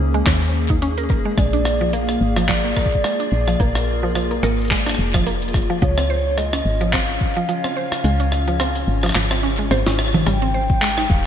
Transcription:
Already playing: D#3 A#3 C#4 G#4 C5
0.00 C#2
0.14 G#3, closed hi-hat
0.26 D#2 C#4, kick, clap, closed hi-hat
0.32 closed hi-hat
0.36 closed hi-hat
0.42 closed hi-hat
0.45 closed hi-hat
0.50 closed hi-hat
0.70 D#4, kick, closed hi-hat
0.82 C#4, closed hi-hat
0.98 A#4, closed hi-hat
1.10 F1 A#4, kick
1.25 G#3
1.38 A#1 G#3 F4 D5, kick, cross-stick, closed hi-hat
1.53 D4, closed hi-hat
1.65 cross-stick
1.81 F3
1.93 A#3 F5, closed hi-hat
2.09 cross-stick, closed hi-hat
2.21 G#1
2.37 F3, cross-stick, closed hi-hat
2.49 F3 D5, kick, clap, closed hi-hat
2.64 A#3, closed hi-hat
2.72 closed hi-hat
2.77 A#4, kick, cross-stick
2.82 closed hi-hat
2.86 kick
2.92 kick, closed hi-hat
3.04 G#3, cross-stick, closed hi-hat
3.20 D4, closed hi-hat
3.32 A#1
3.48 F3, cross-stick
3.60 A#1 A#3 A#4, kick, closed hi-hat
3.75 cross-stick, closed hi-hat
4.03 F3
4.15 F3, cross-stick, closed hi-hat
4.31 A#3, closed hi-hat
4.43 G#1 A#4, cross-stick
4.59 closed hi-hat
4.62 closed hi-hat
4.65 closed hi-hat
4.68 G#3, kick, clap, closed hi-hat
4.71 closed hi-hat
4.87 D4, cross-stick, closed hi-hat
4.89 cross-stick
4.95 cross-stick
4.99 F1
5.14 F3, kick, cross-stick, closed hi-hat
5.26 A#3, closed hi-hat
5.42 closed hi-hat
5.48 closed hi-hat
5.54 kick, cross-stick, closed hi-hat
5.62 closed hi-hat
5.70 F3
5.82 C#2 C#3 F3 C#4 C#5, kick, closed hi-hat
5.98 C4, cross-stick, closed hi-hat
6.10 C5
6.38 G#3 D#5, cross-stick, closed hi-hat
6.53 C#4, cross-stick, closed hi-hat
6.65 G#1
6.81 F3, closed hi-hat
6.93 C4 F5, kick, cross-stick, clap, closed hi-hat
7.21 kick, closed hi-hat
7.37 F3, closed hi-hat
7.49 F3, closed hi-hat
7.64 C4, cross-stick
7.77 C5
7.92 cross-stick
8.04 C#2 G#3, closed hi-hat
8.20 C#4, closed hi-hat
8.32 cross-stick
8.48 F3, closed hi-hat
8.60 C4, cross-stick, closed hi-hat
8.75 closed hi-hat
8.88 G#1
9.03 F3, cross-stick
9.06 cross-stick
9.09 cross-stick
9.12 G#1, cross-stick
9.15 F3, cross-stick, clap, closed hi-hat
9.19 cross-stick
9.23 cross-stick, closed hi-hat
9.27 cross-stick
9.31 C4, cross-stick
9.43 C#4
9.59 G#3, closed hi-hat
9.71 G#1 C5, cross-stick, high tom
9.86 G#1 C#4, snare, closed hi-hat
9.99 cross-stick
10.14 F3, closed hi-hat, mid tom
10.27 G#1 G3 G#3 D#4 G4 C5 G5, cross-stick, closed hi-hat
10.42 C4
10.54 C5
10.70 kick
10.82 G#3, clap, closed hi-hat
10.98 D#4, cross-stick, closed hi-hat
11.10 D#1 F5, kick

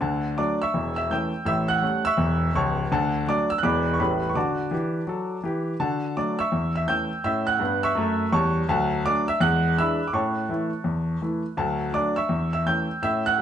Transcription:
0.01 D2 D3 A4 F#5 A5
0.37 F#3 A3 D4 D5 D6
0.62 E5 C#6 E6
0.74 E1 E2
0.96 E5 E6
1.11 E3 A3 C#4 G5 E6 G6
1.45 A1 A2 E5 E6
1.68 F#5 F#6
1.82 G3 A3 C#4
2.05 E5 C#6 E6
2.17 E1 E2
2.55 C#1 C#2 C#5 A5 C#6
2.92 D2 D3 A4 F#5 A5
3.27 F#3 A3 D4 D5 D6
3.50 E6
3.58 F#6
3.63 E1 E2 E3 G#3 B3 D5 B5 D6
3.94 C#6
3.99 A1 A2 G3 A3 C#4 B4 B5
4.29 C#6
4.35 D3 F#4 D5 A5 D6
4.71 E3 G4
5.07 F#3 A4
5.43 E3 G4
5.80 D3 F#4 A4 F#5 A5
6.16 F#3 A3 D4 D5 D6
6.39 E5 C#6 E6
6.52 E2
6.76 E5 E6
6.87 E3 A3 C#4 G5 E6 G6
7.24 A2 C#4 E5 E6
7.47 F#5 F#6
7.59 G2 B3
7.83 E5 C#6 E6
7.95 F#2 A3
8.32 E2 G3 C#5 A5 C#6
8.69 D2 F#3 A4 F#5 A5
9.05 F#3 A3 D4 D5 D6
9.28 E5 E6
9.40 E2 G#3 F#5 F#6
9.78 E3 G#3 D4 E5 B5 E6
10.08 D6
10.13 A2 C#4 C#5 A5 C#6
10.49 E3 A3 E4
10.84 E2
11.22 E3 A3 E4
11.57 D2 F#3 A4 F#5 A5
11.93 F#3 A3 D4 D5 D6
12.16 E5 C#6 E6
12.29 E2
12.53 E5 E6
12.66 E3 A3 C#4 G5 E6 G6
13.02 A2 C#4 E5 E6
13.26 F#5 F#6
13.38 G3 A3

